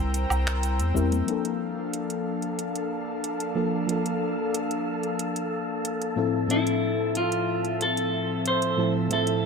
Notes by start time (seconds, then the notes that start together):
Already playing: C2 G3 C4 E4 A#4 C5 G5 A#5 E6
0.14 closed hi-hat, shaker
0.30 C2, low woodblock, shaker
0.47 finger snap, shaker
0.63 closed hi-hat, shaker
0.80 E2, closed hi-hat, shaker
0.94 E2 G3 C4 E4 A#4, kick, shaker
1.12 closed hi-hat, high conga, shaker
1.26 F3 A#3 D4 A4 F5 A5, closed hi-hat
1.31 A4
1.45 closed hi-hat
1.94 closed hi-hat
2.10 closed hi-hat
2.42 closed hi-hat
2.59 closed hi-hat
2.76 closed hi-hat
3.24 closed hi-hat
3.40 closed hi-hat
3.55 F3 A#3 D4 A4
3.87 F3 A#3 D4, closed hi-hat
3.92 A4
4.06 closed hi-hat
4.54 closed hi-hat
4.71 closed hi-hat
5.03 closed hi-hat
5.19 closed hi-hat
5.36 closed hi-hat
5.85 closed hi-hat
6.02 closed hi-hat
6.16 A2 F3 C4 E4 A4 E5
6.47 A2 F3 C4 E4 E5, closed hi-hat
6.52 A4
6.67 closed hi-hat
7.15 F4, closed hi-hat
7.32 closed hi-hat
7.65 closed hi-hat
7.81 A4, closed hi-hat
7.97 closed hi-hat
8.46 C5, closed hi-hat
8.62 closed hi-hat
8.77 A2 F3 C4 E4 A4
9.09 A2 F3 C4 E5, closed hi-hat
9.13 A4
9.27 closed hi-hat